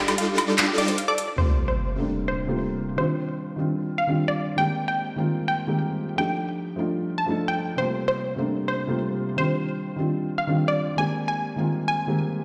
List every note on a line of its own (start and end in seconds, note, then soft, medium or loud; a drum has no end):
0.00 0.76 G3 medium
0.00 0.76 D4 medium
0.00 0.76 D#4 medium
0.00 0.76 F4 medium
0.00 0.76 A4 medium
0.08 0.13 G4 loud
0.08 closed hi-hat medium
0.08 high woodblock medium
0.18 0.21 F5 medium
0.18 closed hi-hat medium
0.28 0.33 G4 medium
0.38 0.43 F4 medium
0.38 closed hi-hat medium
0.38 high woodblock medium
0.48 0.51 D5 medium
0.58 0.63 D5 medium
0.58 clap loud
0.58 closed hi-hat medium
0.68 0.73 G4 loud
0.78 0.89 G3 loud
0.78 0.89 D4 medium
0.78 0.89 D#4 medium
0.78 0.89 F4 medium
0.78 0.83 G4 loud
0.78 0.89 A4 loud
0.78 1.00 D5 medium
0.78 1.00 D6 medium
0.78 closed hi-hat medium
0.88 0.96 C5 loud
0.88 closed hi-hat medium
0.98 1.03 F5 medium
0.98 closed hi-hat medium
1.08 1.16 A4 loud
1.08 1.30 D5 medium
1.08 1.30 D6 loud
1.18 1.26 A4 medium
1.18 closed hi-hat medium
1.28 1.33 D5 medium
1.36 1.95 C3 medium
1.36 1.95 G3 medium
1.36 1.96 A3 medium
1.36 1.96 A#3 medium
1.36 1.60 C5 medium
1.36 sub drop medium
1.40 1.97 F4 medium
1.68 1.90 C5 medium
1.96 2.45 C3 medium
1.96 2.45 G3 medium
1.96 2.46 A3 medium
1.96 2.46 A#3 medium
1.96 2.47 D4 medium
2.28 2.50 C5 medium
2.47 2.56 C3 medium
2.47 2.56 G3 medium
2.47 2.56 A3 medium
2.47 2.56 A#3 medium
2.47 2.57 F4 medium
2.96 3.55 D#3 medium
2.96 3.55 G3 medium
2.96 3.56 C4 medium
2.96 3.56 D4 medium
2.96 3.57 F4 medium
2.96 3.27 C5 medium
3.56 4.05 D#3 medium
3.56 4.05 G3 medium
3.56 4.06 C4 medium
3.56 4.06 D4 medium
3.60 4.07 F4 medium
3.98 4.20 F5 medium
4.07 4.16 D#3 medium
4.07 4.16 G3 medium
4.07 4.16 C4 medium
4.07 4.16 D4 medium
4.07 4.17 F4 medium
4.28 4.50 D5 medium
4.56 5.15 D#3 medium
4.56 5.15 G#3 medium
4.56 5.16 A#3 medium
4.56 5.16 C4 medium
4.56 4.80 G5 loud
4.60 5.17 G4 medium
4.88 5.10 G5 medium
5.16 5.65 D#3 medium
5.16 5.65 G#3 medium
5.16 5.66 A#3 medium
5.16 5.66 C4 medium
5.20 5.67 F4 medium
5.48 5.70 G5 medium
5.67 5.76 D#3 medium
5.67 5.76 G#3 medium
5.67 5.76 A#3 medium
5.67 5.76 C4 medium
5.67 5.77 G4 medium
6.16 6.75 F3 medium
6.16 6.75 A3 medium
6.16 6.76 D4 medium
6.16 6.76 D#4 medium
6.16 6.47 G5 medium
6.20 6.77 G4 medium
6.76 7.25 F3 medium
6.76 7.25 A3 medium
6.76 7.26 D4 medium
6.76 7.26 D#4 medium
6.76 7.27 F4 medium
7.18 7.40 A5 medium
7.26 7.75 F3 medium
7.26 7.75 A3 medium
7.26 7.76 D4 medium
7.26 7.76 D#4 medium
7.30 7.77 A4 medium
7.48 7.70 G5 medium
7.76 8.35 C3 medium
7.76 8.35 G3 medium
7.76 8.36 A3 medium
7.76 8.36 A#3 medium
7.76 8.00 C5 medium
7.80 8.37 F4 medium
8.08 8.30 C5 medium
8.36 8.85 C3 medium
8.36 8.85 G3 medium
8.36 8.86 A3 medium
8.36 8.86 A#3 medium
8.36 8.87 D4 medium
8.68 8.90 C5 medium
8.87 8.96 C3 medium
8.87 8.96 G3 medium
8.87 8.96 A3 medium
8.87 8.96 A#3 medium
8.87 8.97 F4 medium
9.36 9.95 D#3 medium
9.36 9.95 G3 medium
9.36 9.96 C4 medium
9.36 9.96 D4 medium
9.36 9.67 C5 medium
9.40 9.97 F4 medium
9.96 10.45 D#3 medium
9.96 10.45 G3 medium
9.96 10.46 C4 medium
9.96 10.46 D4 medium
9.96 10.47 F4 medium
10.38 10.60 F5 medium
10.47 10.56 D#3 medium
10.47 10.56 G3 medium
10.47 10.56 C4 medium
10.47 10.56 D4 medium
10.47 10.57 F4 medium
10.68 10.90 D5 medium
10.96 11.55 D#3 medium
10.96 11.55 G#3 medium
10.96 11.56 A#3 medium
10.96 11.56 C4 medium
10.96 11.57 G4 medium
10.96 11.20 G#5 loud
11.28 11.50 G#5 medium
11.56 12.05 D#3 medium
11.56 12.05 G#3 medium
11.56 12.06 A#3 medium
11.56 12.06 C4 medium
11.60 12.07 F4 medium
11.88 12.10 G#5 medium
12.07 12.16 D#3 medium
12.07 12.16 G#3 medium
12.07 12.16 A#3 medium
12.07 12.16 C4 medium
12.07 12.17 G4 medium